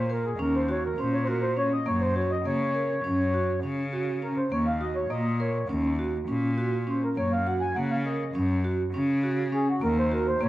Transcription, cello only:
0, 0, Header, 1, 2, 480
1, 0, Start_track
1, 0, Tempo, 588813
1, 1524, Time_signature, 9, 3, 24, 8
1, 8548, End_track
2, 0, Start_track
2, 0, Title_t, "Cello"
2, 0, Program_c, 0, 42
2, 0, Note_on_c, 0, 46, 65
2, 232, Note_off_c, 0, 46, 0
2, 318, Note_on_c, 0, 39, 67
2, 711, Note_off_c, 0, 39, 0
2, 802, Note_on_c, 0, 46, 62
2, 1389, Note_off_c, 0, 46, 0
2, 1528, Note_on_c, 0, 42, 70
2, 1917, Note_off_c, 0, 42, 0
2, 2003, Note_on_c, 0, 49, 67
2, 2394, Note_off_c, 0, 49, 0
2, 2488, Note_on_c, 0, 42, 71
2, 2877, Note_off_c, 0, 42, 0
2, 2964, Note_on_c, 0, 49, 64
2, 3551, Note_off_c, 0, 49, 0
2, 3684, Note_on_c, 0, 39, 65
2, 4075, Note_off_c, 0, 39, 0
2, 4158, Note_on_c, 0, 46, 66
2, 4552, Note_off_c, 0, 46, 0
2, 4641, Note_on_c, 0, 39, 74
2, 5033, Note_off_c, 0, 39, 0
2, 5123, Note_on_c, 0, 46, 66
2, 5709, Note_off_c, 0, 46, 0
2, 5844, Note_on_c, 0, 42, 71
2, 6234, Note_off_c, 0, 42, 0
2, 6322, Note_on_c, 0, 49, 72
2, 6713, Note_off_c, 0, 49, 0
2, 6805, Note_on_c, 0, 42, 74
2, 7195, Note_off_c, 0, 42, 0
2, 7286, Note_on_c, 0, 49, 70
2, 7870, Note_off_c, 0, 49, 0
2, 8004, Note_on_c, 0, 39, 76
2, 8393, Note_off_c, 0, 39, 0
2, 8479, Note_on_c, 0, 46, 72
2, 8548, Note_off_c, 0, 46, 0
2, 8548, End_track
0, 0, End_of_file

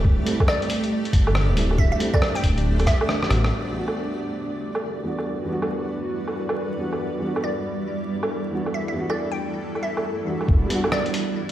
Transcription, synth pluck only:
0, 0, Header, 1, 2, 480
1, 0, Start_track
1, 0, Key_signature, 1, "minor"
1, 0, Tempo, 434783
1, 53, Time_signature, 4, 2, 24, 8
1, 12715, End_track
2, 0, Start_track
2, 0, Title_t, "Synth pluck"
2, 0, Program_c, 0, 84
2, 534, Note_on_c, 0, 74, 94
2, 1013, Note_off_c, 0, 74, 0
2, 1969, Note_on_c, 0, 76, 90
2, 2069, Note_off_c, 0, 76, 0
2, 2119, Note_on_c, 0, 76, 77
2, 2178, Note_off_c, 0, 76, 0
2, 2358, Note_on_c, 0, 74, 94
2, 2571, Note_off_c, 0, 74, 0
2, 2598, Note_on_c, 0, 79, 92
2, 2851, Note_off_c, 0, 79, 0
2, 3165, Note_on_c, 0, 76, 91
2, 3649, Note_off_c, 0, 76, 0
2, 8210, Note_on_c, 0, 74, 84
2, 8691, Note_off_c, 0, 74, 0
2, 9651, Note_on_c, 0, 76, 81
2, 9750, Note_off_c, 0, 76, 0
2, 9807, Note_on_c, 0, 76, 71
2, 9862, Note_off_c, 0, 76, 0
2, 10042, Note_on_c, 0, 74, 85
2, 10254, Note_off_c, 0, 74, 0
2, 10284, Note_on_c, 0, 79, 88
2, 10534, Note_off_c, 0, 79, 0
2, 10849, Note_on_c, 0, 76, 86
2, 11331, Note_off_c, 0, 76, 0
2, 12055, Note_on_c, 0, 74, 89
2, 12534, Note_off_c, 0, 74, 0
2, 12715, End_track
0, 0, End_of_file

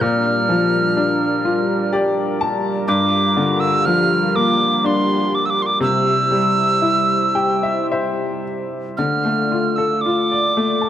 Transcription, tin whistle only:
0, 0, Header, 1, 2, 480
1, 0, Start_track
1, 0, Key_signature, -1, "minor"
1, 0, Tempo, 953895
1, 6, Time_signature, 3, 2, 24, 8
1, 1446, Tempo, 981997
1, 2886, Tempo, 1008403
1, 3366, Tempo, 1079137
1, 4326, Tempo, 1039861
1, 5206, End_track
2, 0, Start_track
2, 0, Title_t, "Tin whistle"
2, 0, Program_c, 0, 75
2, 6, Note_on_c, 0, 89, 88
2, 968, Note_off_c, 0, 89, 0
2, 1447, Note_on_c, 0, 86, 94
2, 1801, Note_on_c, 0, 88, 91
2, 1808, Note_off_c, 0, 86, 0
2, 1925, Note_on_c, 0, 89, 106
2, 1932, Note_off_c, 0, 88, 0
2, 2171, Note_on_c, 0, 86, 90
2, 2178, Note_off_c, 0, 89, 0
2, 2417, Note_on_c, 0, 84, 87
2, 2424, Note_off_c, 0, 86, 0
2, 2655, Note_on_c, 0, 86, 74
2, 2662, Note_off_c, 0, 84, 0
2, 2708, Note_on_c, 0, 88, 52
2, 2716, Note_off_c, 0, 86, 0
2, 2730, Note_on_c, 0, 86, 77
2, 2737, Note_off_c, 0, 88, 0
2, 2790, Note_on_c, 0, 84, 56
2, 2797, Note_off_c, 0, 86, 0
2, 2808, Note_on_c, 0, 86, 79
2, 2816, Note_off_c, 0, 84, 0
2, 2884, Note_off_c, 0, 86, 0
2, 2887, Note_on_c, 0, 88, 87
2, 3828, Note_off_c, 0, 88, 0
2, 4319, Note_on_c, 0, 89, 68
2, 4682, Note_on_c, 0, 88, 61
2, 4689, Note_off_c, 0, 89, 0
2, 4800, Note_on_c, 0, 86, 72
2, 4807, Note_off_c, 0, 88, 0
2, 5206, Note_off_c, 0, 86, 0
2, 5206, End_track
0, 0, End_of_file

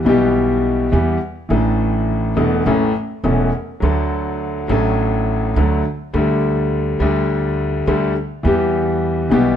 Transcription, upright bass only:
0, 0, Header, 1, 2, 480
1, 0, Start_track
1, 0, Key_signature, 2, "major"
1, 0, Tempo, 578592
1, 1249, Time_signature, 4, 2, 24, 8
1, 7935, End_track
2, 0, Start_track
2, 0, Title_t, "Upright bass"
2, 0, Program_c, 0, 32
2, 49, Note_on_c, 0, 35, 82
2, 732, Note_off_c, 0, 35, 0
2, 770, Note_on_c, 0, 40, 82
2, 971, Note_off_c, 0, 40, 0
2, 1246, Note_on_c, 0, 33, 86
2, 1930, Note_off_c, 0, 33, 0
2, 1965, Note_on_c, 0, 28, 71
2, 2168, Note_off_c, 0, 28, 0
2, 2206, Note_on_c, 0, 33, 84
2, 2410, Note_off_c, 0, 33, 0
2, 2685, Note_on_c, 0, 28, 85
2, 2890, Note_off_c, 0, 28, 0
2, 3171, Note_on_c, 0, 38, 87
2, 3859, Note_off_c, 0, 38, 0
2, 3893, Note_on_c, 0, 33, 87
2, 4582, Note_off_c, 0, 33, 0
2, 4615, Note_on_c, 0, 38, 95
2, 4820, Note_off_c, 0, 38, 0
2, 5091, Note_on_c, 0, 38, 88
2, 5780, Note_off_c, 0, 38, 0
2, 5808, Note_on_c, 0, 38, 83
2, 6496, Note_off_c, 0, 38, 0
2, 6532, Note_on_c, 0, 38, 88
2, 6735, Note_off_c, 0, 38, 0
2, 7008, Note_on_c, 0, 40, 90
2, 7694, Note_off_c, 0, 40, 0
2, 7727, Note_on_c, 0, 35, 91
2, 7935, Note_off_c, 0, 35, 0
2, 7935, End_track
0, 0, End_of_file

